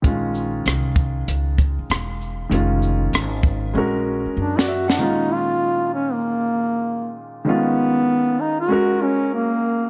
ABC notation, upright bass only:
X:1
M:4/4
L:1/16
Q:"Swing 16ths" 1/4=97
K:Bbm
V:1 name="Upright bass" clef=bass
B,,,4 C,,4 D,,3 z =E,,,4 | F,,,4 A,,,4 B,,,3 z ^F,,4 | z16 | z16 |]